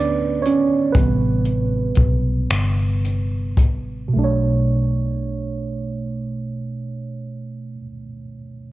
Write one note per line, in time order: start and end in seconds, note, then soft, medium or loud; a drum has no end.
0.00 0.91 D2 medium
0.00 0.91 D3 soft
0.00 0.91 A3 soft
0.00 0.95 B3 medium
0.00 0.46 C#4 medium
0.00 0.42 D4 medium
0.00 0.92 B4 medium
0.00 0.42 C#5 medium
0.00 0.45 D5 medium
0.42 0.65 C#5 medium
0.42 closed hi-hat soft
0.46 0.68 C#4 medium
0.92 1.92 A1 medium
0.92 1.62 C3 soft
0.92 1.62 G3 soft
0.92 2.98 B4 medium
0.92 kick medium
0.92 closed hi-hat medium
0.97 1.63 B3 medium
1.45 closed hi-hat soft
1.95 2.45 B1 medium
1.95 kick medium
1.95 closed hi-hat soft
2.50 3.58 G1 medium
2.50 finger snap medium
2.50 closed hi-hat medium
3.05 closed hi-hat soft
3.57 4.11 A1 medium
3.57 kick medium
3.57 closed hi-hat soft
4.08 7.73 B2 medium
4.14 7.81 B1 medium
4.14 7.78 A3 medium
4.19 7.84 D4 medium
4.24 7.89 C#5 medium